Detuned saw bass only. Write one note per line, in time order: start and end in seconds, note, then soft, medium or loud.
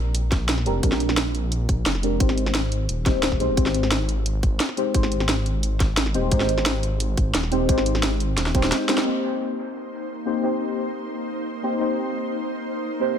0.00 0.67 A#1 loud
0.66 0.81 F1 loud
0.83 1.68 A#1 loud
1.69 1.84 A#1 medium
1.86 2.19 F1 loud
2.20 2.88 G#1 loud
2.89 3.42 D#1 medium
3.40 3.50 C2 medium
3.49 3.57 D#1 medium
3.57 4.59 G#1 loud
4.94 6.16 G#1 loud
6.15 6.30 D#1 medium
6.32 7.16 G#1 loud
7.17 7.33 G#1 medium
7.35 7.68 D#1 loud
7.69 8.36 G#1 loud
8.37 8.54 D#1 medium
8.55 8.72 D#1 medium